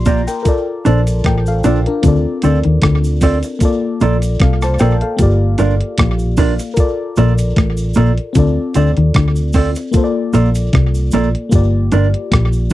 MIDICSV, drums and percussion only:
0, 0, Header, 1, 2, 480
1, 0, Start_track
1, 0, Key_signature, -2, "major"
1, 0, Tempo, 790514
1, 277, Time_signature, 4, 2, 24, 8
1, 7730, End_track
2, 0, Start_track
2, 0, Title_t, "Drums"
2, 33, Note_on_c, 9, 69, 57
2, 35, Note_on_c, 9, 42, 71
2, 37, Note_on_c, 9, 36, 99
2, 94, Note_off_c, 9, 69, 0
2, 95, Note_off_c, 9, 42, 0
2, 97, Note_off_c, 9, 36, 0
2, 167, Note_on_c, 9, 69, 66
2, 169, Note_on_c, 9, 42, 51
2, 228, Note_off_c, 9, 69, 0
2, 229, Note_off_c, 9, 42, 0
2, 275, Note_on_c, 9, 42, 76
2, 275, Note_on_c, 9, 69, 53
2, 277, Note_on_c, 9, 36, 95
2, 336, Note_off_c, 9, 42, 0
2, 336, Note_off_c, 9, 69, 0
2, 338, Note_off_c, 9, 36, 0
2, 518, Note_on_c, 9, 69, 50
2, 522, Note_on_c, 9, 42, 62
2, 579, Note_off_c, 9, 69, 0
2, 583, Note_off_c, 9, 42, 0
2, 649, Note_on_c, 9, 42, 50
2, 650, Note_on_c, 9, 69, 66
2, 710, Note_off_c, 9, 42, 0
2, 711, Note_off_c, 9, 69, 0
2, 753, Note_on_c, 9, 42, 75
2, 756, Note_on_c, 9, 36, 99
2, 765, Note_on_c, 9, 37, 106
2, 814, Note_off_c, 9, 42, 0
2, 816, Note_off_c, 9, 36, 0
2, 826, Note_off_c, 9, 37, 0
2, 888, Note_on_c, 9, 69, 46
2, 948, Note_off_c, 9, 69, 0
2, 994, Note_on_c, 9, 69, 65
2, 996, Note_on_c, 9, 42, 57
2, 1055, Note_off_c, 9, 69, 0
2, 1057, Note_off_c, 9, 42, 0
2, 1130, Note_on_c, 9, 42, 45
2, 1191, Note_off_c, 9, 42, 0
2, 1232, Note_on_c, 9, 42, 92
2, 1235, Note_on_c, 9, 36, 108
2, 1238, Note_on_c, 9, 69, 54
2, 1293, Note_off_c, 9, 42, 0
2, 1296, Note_off_c, 9, 36, 0
2, 1299, Note_off_c, 9, 69, 0
2, 1469, Note_on_c, 9, 42, 74
2, 1476, Note_on_c, 9, 69, 47
2, 1530, Note_off_c, 9, 42, 0
2, 1537, Note_off_c, 9, 69, 0
2, 1600, Note_on_c, 9, 42, 46
2, 1661, Note_off_c, 9, 42, 0
2, 1710, Note_on_c, 9, 42, 99
2, 1714, Note_on_c, 9, 36, 121
2, 1721, Note_on_c, 9, 37, 123
2, 1771, Note_off_c, 9, 42, 0
2, 1775, Note_off_c, 9, 36, 0
2, 1781, Note_off_c, 9, 37, 0
2, 1846, Note_on_c, 9, 69, 44
2, 1907, Note_off_c, 9, 69, 0
2, 1949, Note_on_c, 9, 46, 75
2, 1950, Note_on_c, 9, 69, 62
2, 1952, Note_on_c, 9, 36, 90
2, 2010, Note_off_c, 9, 46, 0
2, 2010, Note_off_c, 9, 69, 0
2, 2013, Note_off_c, 9, 36, 0
2, 2081, Note_on_c, 9, 42, 48
2, 2083, Note_on_c, 9, 69, 68
2, 2142, Note_off_c, 9, 42, 0
2, 2143, Note_off_c, 9, 69, 0
2, 2188, Note_on_c, 9, 42, 75
2, 2191, Note_on_c, 9, 69, 56
2, 2192, Note_on_c, 9, 36, 100
2, 2249, Note_off_c, 9, 42, 0
2, 2251, Note_off_c, 9, 69, 0
2, 2253, Note_off_c, 9, 36, 0
2, 2433, Note_on_c, 9, 69, 47
2, 2437, Note_on_c, 9, 42, 66
2, 2493, Note_off_c, 9, 69, 0
2, 2498, Note_off_c, 9, 42, 0
2, 2562, Note_on_c, 9, 42, 51
2, 2565, Note_on_c, 9, 69, 69
2, 2623, Note_off_c, 9, 42, 0
2, 2626, Note_off_c, 9, 69, 0
2, 2669, Note_on_c, 9, 42, 75
2, 2673, Note_on_c, 9, 36, 106
2, 2681, Note_on_c, 9, 37, 112
2, 2730, Note_off_c, 9, 42, 0
2, 2733, Note_off_c, 9, 36, 0
2, 2741, Note_off_c, 9, 37, 0
2, 2803, Note_on_c, 9, 69, 47
2, 2808, Note_on_c, 9, 37, 64
2, 2864, Note_off_c, 9, 69, 0
2, 2869, Note_off_c, 9, 37, 0
2, 2907, Note_on_c, 9, 69, 62
2, 2911, Note_on_c, 9, 42, 57
2, 2918, Note_on_c, 9, 37, 70
2, 2968, Note_off_c, 9, 69, 0
2, 2972, Note_off_c, 9, 42, 0
2, 2978, Note_off_c, 9, 37, 0
2, 3042, Note_on_c, 9, 42, 43
2, 3103, Note_off_c, 9, 42, 0
2, 3149, Note_on_c, 9, 42, 95
2, 3149, Note_on_c, 9, 69, 60
2, 3152, Note_on_c, 9, 36, 108
2, 3209, Note_off_c, 9, 42, 0
2, 3210, Note_off_c, 9, 69, 0
2, 3213, Note_off_c, 9, 36, 0
2, 3388, Note_on_c, 9, 42, 75
2, 3391, Note_on_c, 9, 69, 46
2, 3449, Note_off_c, 9, 42, 0
2, 3452, Note_off_c, 9, 69, 0
2, 3525, Note_on_c, 9, 42, 44
2, 3586, Note_off_c, 9, 42, 0
2, 3629, Note_on_c, 9, 42, 95
2, 3634, Note_on_c, 9, 36, 115
2, 3639, Note_on_c, 9, 37, 122
2, 3689, Note_off_c, 9, 42, 0
2, 3694, Note_off_c, 9, 36, 0
2, 3700, Note_off_c, 9, 37, 0
2, 3758, Note_on_c, 9, 69, 43
2, 3819, Note_off_c, 9, 69, 0
2, 3868, Note_on_c, 9, 69, 61
2, 3870, Note_on_c, 9, 46, 75
2, 3872, Note_on_c, 9, 36, 98
2, 3928, Note_off_c, 9, 69, 0
2, 3930, Note_off_c, 9, 46, 0
2, 3933, Note_off_c, 9, 36, 0
2, 4002, Note_on_c, 9, 69, 69
2, 4004, Note_on_c, 9, 42, 51
2, 4063, Note_off_c, 9, 69, 0
2, 4065, Note_off_c, 9, 42, 0
2, 4108, Note_on_c, 9, 69, 52
2, 4110, Note_on_c, 9, 42, 75
2, 4113, Note_on_c, 9, 36, 98
2, 4169, Note_off_c, 9, 69, 0
2, 4171, Note_off_c, 9, 42, 0
2, 4174, Note_off_c, 9, 36, 0
2, 4349, Note_on_c, 9, 69, 49
2, 4359, Note_on_c, 9, 42, 65
2, 4409, Note_off_c, 9, 69, 0
2, 4420, Note_off_c, 9, 42, 0
2, 4482, Note_on_c, 9, 69, 72
2, 4486, Note_on_c, 9, 42, 53
2, 4542, Note_off_c, 9, 69, 0
2, 4547, Note_off_c, 9, 42, 0
2, 4593, Note_on_c, 9, 42, 71
2, 4595, Note_on_c, 9, 36, 106
2, 4604, Note_on_c, 9, 37, 107
2, 4653, Note_off_c, 9, 42, 0
2, 4655, Note_off_c, 9, 36, 0
2, 4665, Note_off_c, 9, 37, 0
2, 4718, Note_on_c, 9, 69, 45
2, 4779, Note_off_c, 9, 69, 0
2, 4821, Note_on_c, 9, 69, 63
2, 4839, Note_on_c, 9, 42, 61
2, 4881, Note_off_c, 9, 69, 0
2, 4900, Note_off_c, 9, 42, 0
2, 4964, Note_on_c, 9, 42, 46
2, 5025, Note_off_c, 9, 42, 0
2, 5069, Note_on_c, 9, 69, 57
2, 5072, Note_on_c, 9, 42, 96
2, 5074, Note_on_c, 9, 36, 106
2, 5129, Note_off_c, 9, 69, 0
2, 5133, Note_off_c, 9, 42, 0
2, 5134, Note_off_c, 9, 36, 0
2, 5310, Note_on_c, 9, 42, 73
2, 5311, Note_on_c, 9, 69, 46
2, 5371, Note_off_c, 9, 42, 0
2, 5372, Note_off_c, 9, 69, 0
2, 5445, Note_on_c, 9, 42, 43
2, 5505, Note_off_c, 9, 42, 0
2, 5552, Note_on_c, 9, 42, 98
2, 5555, Note_on_c, 9, 36, 118
2, 5563, Note_on_c, 9, 37, 114
2, 5613, Note_off_c, 9, 42, 0
2, 5616, Note_off_c, 9, 36, 0
2, 5623, Note_off_c, 9, 37, 0
2, 5682, Note_on_c, 9, 69, 44
2, 5743, Note_off_c, 9, 69, 0
2, 5786, Note_on_c, 9, 69, 60
2, 5794, Note_on_c, 9, 36, 93
2, 5794, Note_on_c, 9, 46, 75
2, 5846, Note_off_c, 9, 69, 0
2, 5854, Note_off_c, 9, 36, 0
2, 5855, Note_off_c, 9, 46, 0
2, 5923, Note_on_c, 9, 69, 65
2, 5929, Note_on_c, 9, 42, 52
2, 5983, Note_off_c, 9, 69, 0
2, 5990, Note_off_c, 9, 42, 0
2, 6029, Note_on_c, 9, 69, 52
2, 6035, Note_on_c, 9, 42, 75
2, 6036, Note_on_c, 9, 36, 104
2, 6089, Note_off_c, 9, 69, 0
2, 6095, Note_off_c, 9, 42, 0
2, 6096, Note_off_c, 9, 36, 0
2, 6274, Note_on_c, 9, 69, 51
2, 6283, Note_on_c, 9, 42, 65
2, 6334, Note_off_c, 9, 69, 0
2, 6344, Note_off_c, 9, 42, 0
2, 6405, Note_on_c, 9, 69, 73
2, 6410, Note_on_c, 9, 42, 51
2, 6465, Note_off_c, 9, 69, 0
2, 6470, Note_off_c, 9, 42, 0
2, 6515, Note_on_c, 9, 42, 74
2, 6517, Note_on_c, 9, 36, 108
2, 6527, Note_on_c, 9, 37, 112
2, 6576, Note_off_c, 9, 42, 0
2, 6578, Note_off_c, 9, 36, 0
2, 6588, Note_off_c, 9, 37, 0
2, 6646, Note_on_c, 9, 69, 50
2, 6707, Note_off_c, 9, 69, 0
2, 6748, Note_on_c, 9, 69, 66
2, 6761, Note_on_c, 9, 42, 60
2, 6809, Note_off_c, 9, 69, 0
2, 6822, Note_off_c, 9, 42, 0
2, 6891, Note_on_c, 9, 42, 45
2, 6951, Note_off_c, 9, 42, 0
2, 6992, Note_on_c, 9, 69, 58
2, 6997, Note_on_c, 9, 36, 113
2, 7000, Note_on_c, 9, 42, 93
2, 7053, Note_off_c, 9, 69, 0
2, 7058, Note_off_c, 9, 36, 0
2, 7060, Note_off_c, 9, 42, 0
2, 7235, Note_on_c, 9, 69, 45
2, 7236, Note_on_c, 9, 42, 72
2, 7296, Note_off_c, 9, 42, 0
2, 7296, Note_off_c, 9, 69, 0
2, 7371, Note_on_c, 9, 42, 43
2, 7432, Note_off_c, 9, 42, 0
2, 7479, Note_on_c, 9, 36, 117
2, 7479, Note_on_c, 9, 42, 94
2, 7489, Note_on_c, 9, 37, 115
2, 7539, Note_off_c, 9, 36, 0
2, 7539, Note_off_c, 9, 42, 0
2, 7550, Note_off_c, 9, 37, 0
2, 7606, Note_on_c, 9, 69, 44
2, 7667, Note_off_c, 9, 69, 0
2, 7711, Note_on_c, 9, 69, 65
2, 7730, Note_off_c, 9, 69, 0
2, 7730, End_track
0, 0, End_of_file